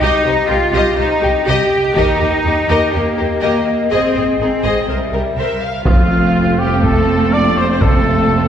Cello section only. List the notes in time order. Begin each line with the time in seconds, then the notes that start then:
0.01 D#4
0.48 F4
0.97 D#4
1.47 G4
1.96 D#4
2.93 A#3
3.91 C4
4.40 C4
4.88 G3
5.88 F2